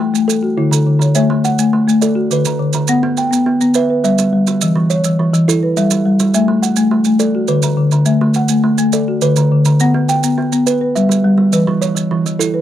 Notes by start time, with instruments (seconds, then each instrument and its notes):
Already playing: marimba A3 E5, kalimba G5
0.00 kalimba A3
0.14 marimba A3, maracas
0.28 kalimba A4, maracas
0.43 marimba F#4
0.57 marimba D3, kalimba E4
0.71 kalimba D3, marimba A4, maracas
0.86 marimba D3
0.99 kalimba D3, marimba C#5, maracas
1.15 marimba A3 E5, kalimba C#5, maracas
1.30 kalimba A3
1.44 marimba F#5, kalimba F#5, maracas
1.59 marimba A3, maracas
1.73 kalimba A3
1.88 marimba A3, maracas
2.02 kalimba A4 D5, maracas
2.15 marimba F#4
2.31 marimba D3, kalimba B4, maracas
2.45 kalimba D3, maracas
2.59 marimba D3
2.73 kalimba D3, maracas
2.88 marimba B3 F#5, maracas
3.03 kalimba B3
3.17 marimba G5, kalimba G5, maracas
3.31 marimba B3, maracas
3.46 kalimba B3
3.61 marimba B3, maracas
3.74 kalimba B4 E5, maracas
3.90 marimba B4
4.04 marimba G3, kalimba E5, maracas
4.18 kalimba G3, maracas
4.33 marimba G3
4.47 kalimba G3, maracas
4.61 marimba E3, maracas
4.76 kalimba E3
4.90 kalimba C#5, marimba C#5, maracas
5.04 marimba E3, maracas
5.20 kalimba E3
5.33 marimba E3, maracas
5.48 kalimba E4 A4, maracas
5.63 marimba B4
5.77 marimba G3, kalimba E5, maracas
5.91 kalimba G3, maracas
6.06 marimba G3
6.19 kalimba G3, maracas
6.34 marimba A3 E5, maracas
6.48 kalimba A3
6.62 kalimba F#5, maracas
6.76 marimba A3, maracas
6.91 kalimba A3
7.05 marimba A3, maracas
7.20 kalimba A4 D5, maracas
7.35 marimba F#4
7.48 marimba D3, kalimba B4, maracas
7.62 kalimba D3, maracas
7.77 marimba D3
7.91 kalimba D3, maracas
8.06 marimba A3 E5, maracas
8.21 kalimba A3
8.34 marimba F#5, kalimba F#5, maracas
8.48 marimba A3, maracas
8.64 kalimba A3
8.78 marimba A3, maracas
8.93 kalimba A4 D5, maracas
9.08 marimba F#4
9.21 marimba D3, kalimba B4, maracas
9.36 kalimba D3, maracas
9.52 marimba D3
9.65 kalimba D3, maracas
9.80 marimba B3 F#5, maracas
9.94 kalimba B3
10.08 marimba G5, kalimba G5, maracas
10.23 marimba B3, maracas
10.38 kalimba B3
10.52 marimba B3, maracas
10.67 kalimba B4, maracas
10.81 marimba B4
10.96 marimba G3, kalimba E5, maracas
11.09 kalimba G3, maracas
11.24 marimba G3
11.38 kalimba G3
11.53 marimba E3 B4, maracas
11.67 kalimba E3
11.82 kalimba C#5, marimba C#5, maracas
11.95 marimba E3, maracas
12.11 kalimba E3
12.26 marimba E3, maracas
12.39 kalimba E4 A4, maracas
12.54 marimba B4